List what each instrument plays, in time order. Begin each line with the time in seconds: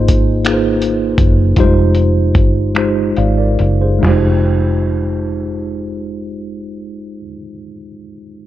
Already playing: fingered electric bass G#1, tine electric piano A#3 D#4 F4 G#4 C5
0.08 kick, closed hi-hat
0.44 tine electric piano A#3 D#4 F4 G#4 B4, finger snap, closed hi-hat
0.53 tine electric piano C5
0.82 closed hi-hat
1.18 fingered electric bass F#1, kick, closed hi-hat
1.56 fingered electric bass F1, tine electric piano G3 D#4 F4 G4 C5, kick, closed hi-hat
1.64 tine electric piano G#3
1.95 closed hi-hat
2.35 fingered electric bass G1, kick, closed hi-hat
2.75 tine electric piano G#3 D#4 F4 G4 C5, finger snap, closed hi-hat
3.16 fingered electric bass G#1, tine electric piano D5 F5, closed hi-hat
3.38 tine electric piano A#4 D5
3.59 fingered electric bass F#1, closed hi-hat
3.81 tine electric piano G#4 C5
3.99 tine electric piano G#3 D#4
4.03 fingered electric bass F1, tine electric piano F4 G4, snare, floor tom, crash
4.09 tine electric piano C5